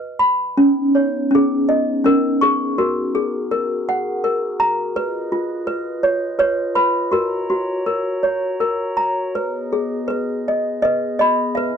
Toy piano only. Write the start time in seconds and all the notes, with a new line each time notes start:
Already playing: F#4 B4 D#5
0.19 B5
0.57 C#4
0.95 C#5
1.31 C#4
1.35 G#4
1.69 D#5
2.04 C#4 A#4
2.41 G#4 C#6
2.78 F#4 A#4
3.15 G#4
3.51 A#4
3.89 F#5
4.24 A#4
4.60 A#5
4.96 B4
5.32 F4
5.67 B4
6.03 C#5
6.39 B4 C#5
6.75 B4 B5
7.12 F#4 A#4
7.50 F#4
7.86 A#4
8.23 C#5
8.60 A#4
8.97 A#5
9.35 B4
9.73 G#4
10.08 B4
10.48 D#5
10.82 B4 D#5
11.19 D#5 B5
11.55 B4 E5